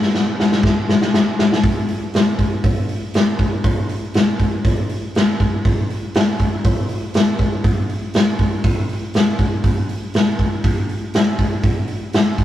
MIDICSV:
0, 0, Header, 1, 2, 480
1, 0, Start_track
1, 0, Tempo, 499584
1, 1578, Time_signature, 4, 2, 24, 8
1, 11956, End_track
2, 0, Start_track
2, 0, Title_t, "Drums"
2, 21, Note_on_c, 9, 38, 58
2, 117, Note_off_c, 9, 38, 0
2, 141, Note_on_c, 9, 38, 74
2, 237, Note_off_c, 9, 38, 0
2, 383, Note_on_c, 9, 38, 77
2, 479, Note_off_c, 9, 38, 0
2, 500, Note_on_c, 9, 38, 71
2, 596, Note_off_c, 9, 38, 0
2, 609, Note_on_c, 9, 36, 106
2, 621, Note_on_c, 9, 38, 86
2, 705, Note_off_c, 9, 36, 0
2, 717, Note_off_c, 9, 38, 0
2, 858, Note_on_c, 9, 38, 91
2, 954, Note_off_c, 9, 38, 0
2, 976, Note_on_c, 9, 38, 80
2, 1072, Note_off_c, 9, 38, 0
2, 1096, Note_on_c, 9, 38, 96
2, 1192, Note_off_c, 9, 38, 0
2, 1338, Note_on_c, 9, 38, 100
2, 1434, Note_off_c, 9, 38, 0
2, 1465, Note_on_c, 9, 38, 89
2, 1561, Note_off_c, 9, 38, 0
2, 1571, Note_on_c, 9, 36, 105
2, 1571, Note_on_c, 9, 46, 64
2, 1667, Note_off_c, 9, 36, 0
2, 1667, Note_off_c, 9, 46, 0
2, 1812, Note_on_c, 9, 46, 47
2, 1908, Note_off_c, 9, 46, 0
2, 2054, Note_on_c, 9, 46, 60
2, 2065, Note_on_c, 9, 38, 94
2, 2150, Note_off_c, 9, 46, 0
2, 2161, Note_off_c, 9, 38, 0
2, 2294, Note_on_c, 9, 36, 75
2, 2295, Note_on_c, 9, 46, 47
2, 2391, Note_off_c, 9, 36, 0
2, 2391, Note_off_c, 9, 46, 0
2, 2535, Note_on_c, 9, 46, 68
2, 2536, Note_on_c, 9, 36, 106
2, 2631, Note_off_c, 9, 46, 0
2, 2632, Note_off_c, 9, 36, 0
2, 2775, Note_on_c, 9, 46, 51
2, 2871, Note_off_c, 9, 46, 0
2, 3017, Note_on_c, 9, 46, 67
2, 3029, Note_on_c, 9, 38, 104
2, 3113, Note_off_c, 9, 46, 0
2, 3125, Note_off_c, 9, 38, 0
2, 3254, Note_on_c, 9, 46, 49
2, 3258, Note_on_c, 9, 36, 80
2, 3350, Note_off_c, 9, 46, 0
2, 3354, Note_off_c, 9, 36, 0
2, 3497, Note_on_c, 9, 46, 60
2, 3500, Note_on_c, 9, 36, 104
2, 3593, Note_off_c, 9, 46, 0
2, 3596, Note_off_c, 9, 36, 0
2, 3740, Note_on_c, 9, 46, 51
2, 3836, Note_off_c, 9, 46, 0
2, 3980, Note_on_c, 9, 46, 66
2, 3991, Note_on_c, 9, 38, 99
2, 4076, Note_off_c, 9, 46, 0
2, 4087, Note_off_c, 9, 38, 0
2, 4223, Note_on_c, 9, 36, 74
2, 4225, Note_on_c, 9, 46, 45
2, 4319, Note_off_c, 9, 36, 0
2, 4321, Note_off_c, 9, 46, 0
2, 4465, Note_on_c, 9, 36, 100
2, 4467, Note_on_c, 9, 46, 64
2, 4561, Note_off_c, 9, 36, 0
2, 4563, Note_off_c, 9, 46, 0
2, 4703, Note_on_c, 9, 46, 48
2, 4799, Note_off_c, 9, 46, 0
2, 4949, Note_on_c, 9, 46, 58
2, 4961, Note_on_c, 9, 38, 101
2, 5045, Note_off_c, 9, 46, 0
2, 5057, Note_off_c, 9, 38, 0
2, 5189, Note_on_c, 9, 36, 80
2, 5195, Note_on_c, 9, 46, 45
2, 5285, Note_off_c, 9, 36, 0
2, 5291, Note_off_c, 9, 46, 0
2, 5428, Note_on_c, 9, 46, 56
2, 5429, Note_on_c, 9, 36, 101
2, 5524, Note_off_c, 9, 46, 0
2, 5525, Note_off_c, 9, 36, 0
2, 5671, Note_on_c, 9, 46, 45
2, 5767, Note_off_c, 9, 46, 0
2, 5904, Note_on_c, 9, 46, 62
2, 5915, Note_on_c, 9, 38, 104
2, 6000, Note_off_c, 9, 46, 0
2, 6012, Note_off_c, 9, 38, 0
2, 6145, Note_on_c, 9, 46, 46
2, 6147, Note_on_c, 9, 36, 74
2, 6241, Note_off_c, 9, 46, 0
2, 6243, Note_off_c, 9, 36, 0
2, 6382, Note_on_c, 9, 46, 66
2, 6386, Note_on_c, 9, 36, 113
2, 6479, Note_off_c, 9, 46, 0
2, 6483, Note_off_c, 9, 36, 0
2, 6619, Note_on_c, 9, 46, 49
2, 6715, Note_off_c, 9, 46, 0
2, 6860, Note_on_c, 9, 46, 67
2, 6871, Note_on_c, 9, 38, 106
2, 6956, Note_off_c, 9, 46, 0
2, 6967, Note_off_c, 9, 38, 0
2, 7096, Note_on_c, 9, 46, 50
2, 7102, Note_on_c, 9, 36, 77
2, 7192, Note_off_c, 9, 46, 0
2, 7198, Note_off_c, 9, 36, 0
2, 7341, Note_on_c, 9, 46, 64
2, 7344, Note_on_c, 9, 36, 103
2, 7437, Note_off_c, 9, 46, 0
2, 7440, Note_off_c, 9, 36, 0
2, 7586, Note_on_c, 9, 46, 48
2, 7682, Note_off_c, 9, 46, 0
2, 7819, Note_on_c, 9, 46, 62
2, 7831, Note_on_c, 9, 38, 100
2, 7915, Note_off_c, 9, 46, 0
2, 7927, Note_off_c, 9, 38, 0
2, 8058, Note_on_c, 9, 46, 46
2, 8063, Note_on_c, 9, 36, 79
2, 8154, Note_off_c, 9, 46, 0
2, 8159, Note_off_c, 9, 36, 0
2, 8301, Note_on_c, 9, 46, 63
2, 8302, Note_on_c, 9, 36, 109
2, 8397, Note_off_c, 9, 46, 0
2, 8398, Note_off_c, 9, 36, 0
2, 8542, Note_on_c, 9, 46, 47
2, 8638, Note_off_c, 9, 46, 0
2, 8781, Note_on_c, 9, 46, 62
2, 8792, Note_on_c, 9, 38, 94
2, 8877, Note_off_c, 9, 46, 0
2, 8888, Note_off_c, 9, 38, 0
2, 9019, Note_on_c, 9, 46, 44
2, 9022, Note_on_c, 9, 36, 82
2, 9115, Note_off_c, 9, 46, 0
2, 9118, Note_off_c, 9, 36, 0
2, 9260, Note_on_c, 9, 46, 56
2, 9262, Note_on_c, 9, 36, 91
2, 9356, Note_off_c, 9, 46, 0
2, 9358, Note_off_c, 9, 36, 0
2, 9503, Note_on_c, 9, 46, 43
2, 9599, Note_off_c, 9, 46, 0
2, 9741, Note_on_c, 9, 46, 58
2, 9753, Note_on_c, 9, 38, 103
2, 9837, Note_off_c, 9, 46, 0
2, 9849, Note_off_c, 9, 38, 0
2, 9984, Note_on_c, 9, 36, 73
2, 9987, Note_on_c, 9, 46, 42
2, 10080, Note_off_c, 9, 36, 0
2, 10083, Note_off_c, 9, 46, 0
2, 10224, Note_on_c, 9, 36, 109
2, 10226, Note_on_c, 9, 46, 66
2, 10320, Note_off_c, 9, 36, 0
2, 10322, Note_off_c, 9, 46, 0
2, 10465, Note_on_c, 9, 46, 47
2, 10561, Note_off_c, 9, 46, 0
2, 10701, Note_on_c, 9, 46, 68
2, 10712, Note_on_c, 9, 38, 100
2, 10797, Note_off_c, 9, 46, 0
2, 10808, Note_off_c, 9, 38, 0
2, 10940, Note_on_c, 9, 46, 52
2, 10942, Note_on_c, 9, 36, 75
2, 11036, Note_off_c, 9, 46, 0
2, 11038, Note_off_c, 9, 36, 0
2, 11176, Note_on_c, 9, 46, 66
2, 11180, Note_on_c, 9, 36, 97
2, 11272, Note_off_c, 9, 46, 0
2, 11276, Note_off_c, 9, 36, 0
2, 11412, Note_on_c, 9, 46, 51
2, 11508, Note_off_c, 9, 46, 0
2, 11657, Note_on_c, 9, 46, 65
2, 11668, Note_on_c, 9, 38, 101
2, 11753, Note_off_c, 9, 46, 0
2, 11764, Note_off_c, 9, 38, 0
2, 11898, Note_on_c, 9, 36, 74
2, 11898, Note_on_c, 9, 46, 47
2, 11956, Note_off_c, 9, 36, 0
2, 11956, Note_off_c, 9, 46, 0
2, 11956, End_track
0, 0, End_of_file